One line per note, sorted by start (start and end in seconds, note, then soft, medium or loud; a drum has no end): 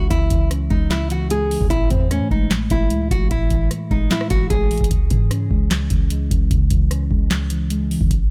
0.00 0.11 C#3 medium
0.00 0.31 E3 medium
0.00 0.71 G#3 medium
0.00 0.51 C#4 medium
0.10 0.30 C#2 loud
0.10 0.90 C#3 medium
0.10 0.48 E4 loud
0.10 kick loud
0.10 closed hi-hat medium
0.30 0.69 C#2 loud
0.30 1.10 E3 medium
0.30 kick loud
0.30 closed hi-hat medium
0.51 1.51 C#4 medium
0.51 cross-stick medium
0.51 closed hi-hat medium
0.70 1.57 C#2 loud
0.70 1.30 G#3 medium
0.70 0.89 D#4 medium
0.70 kick medium
0.91 1.71 C#3 medium
0.91 1.09 E4 medium
0.91 snare loud
0.91 clap medium
0.91 closed hi-hat medium
1.10 1.50 E3 medium
1.10 1.29 F#4 medium
1.10 closed hi-hat medium
1.30 1.71 G#3 medium
1.30 1.68 G#4 medium
1.30 closed hi-hat medium
1.51 1.71 E3 medium
1.51 open hi-hat medium
1.61 1.70 C#2 loud
1.61 kick medium
1.70 1.90 A1 loud
1.70 2.50 A2 loud
1.70 1.88 E4 loud
1.70 kick loud
1.70 closed hi-hat medium
1.90 2.22 E2 loud
1.90 2.70 E3 medium
1.90 2.08 C4 medium
1.90 kick loud
1.90 closed hi-hat medium
2.11 3.11 A3 medium
2.11 2.29 C#4 medium
2.11 cross-stick medium
2.11 closed hi-hat medium
2.21 2.30 A2 loud
2.31 2.69 A1 loud
2.31 2.90 G#3 medium
2.31 2.49 D#4 medium
2.31 kick medium
2.51 3.30 A2 medium
2.51 snare loud
2.51 clap loud
2.51 closed hi-hat medium
2.70 2.92 A1 loud
2.70 3.10 E3 medium
2.70 3.09 E4 medium
2.70 kick loud
2.70 closed hi-hat medium
2.90 3.10 C#2 loud
2.90 3.90 G#3 medium
2.90 closed hi-hat medium
3.11 3.30 A1 loud
3.11 3.50 E3 medium
3.11 3.29 F#4 medium
3.11 kick loud
3.11 closed hi-hat medium
3.31 3.50 A1 loud
3.31 4.10 A2 medium
3.31 3.68 E4 loud
3.31 kick loud
3.31 closed hi-hat medium
3.50 3.70 A1 loud
3.50 4.30 E3 medium
3.50 kick loud
3.50 closed hi-hat medium
3.71 4.71 A3 medium
3.71 cross-stick medium
3.71 closed hi-hat medium
3.91 4.10 A1 loud
3.91 4.50 G#3 loud
3.91 4.09 D#4 medium
3.91 kick medium
4.11 4.91 A2 medium
4.11 4.29 E4 medium
4.11 snare loud
4.11 clap medium
4.11 closed hi-hat medium
4.21 cross-stick loud
4.30 4.50 G#1 loud
4.30 4.70 E3 medium
4.30 4.49 F#4 medium
4.30 kick loud
4.30 closed hi-hat medium
4.50 4.80 A1 loud
4.50 4.91 G#3 medium
4.50 4.88 G#4 medium
4.50 kick loud
4.50 closed hi-hat medium
4.71 4.91 E3 medium
4.71 closed hi-hat soft
4.71 open hi-hat medium
4.78 4.90 A1 loud
4.78 kick medium
4.78 closed hi-hat medium
4.84 closed hi-hat medium
4.91 5.10 C#2 loud
4.91 5.70 C#3 medium
4.91 kick loud
4.91 closed hi-hat medium
5.10 5.49 G#2 loud
5.10 5.90 E3 medium
5.10 kick loud
5.10 closed hi-hat medium
5.31 6.31 C#4 medium
5.31 cross-stick medium
5.31 closed hi-hat medium
5.51 5.89 C#2 loud
5.51 6.10 G#3 medium
5.51 kick medium
5.71 6.50 C#3 medium
5.71 snare loud
5.71 clap loud
5.71 closed hi-hat medium
5.90 6.29 C#2 loud
5.90 6.30 E3 medium
5.90 kick medium
5.90 closed hi-hat medium
6.10 7.09 G#3 medium
6.10 closed hi-hat medium
6.31 6.50 C#2 loud
6.31 6.70 E3 medium
6.31 kick loud
6.31 closed hi-hat medium
6.51 6.70 C#2 loud
6.51 7.30 C#3 medium
6.51 kick loud
6.51 closed hi-hat medium
6.70 7.09 C#2 loud
6.70 7.49 E3 medium
6.70 kick loud
6.70 closed hi-hat medium
6.91 7.91 C#4 medium
6.91 cross-stick medium
6.91 closed hi-hat medium
7.11 7.97 C#2 loud
7.11 7.70 G#3 medium
7.11 kick medium
7.31 8.11 C#3 medium
7.31 snare loud
7.31 clap medium
7.31 closed hi-hat medium
7.50 7.89 E3 medium
7.50 closed hi-hat medium
7.70 8.11 G#3 medium
7.70 closed hi-hat medium
7.90 8.11 E3 medium
7.90 open hi-hat medium
8.01 8.10 C#2 loud
8.01 kick medium
8.11 8.30 A1 loud
8.11 kick loud
8.11 closed hi-hat medium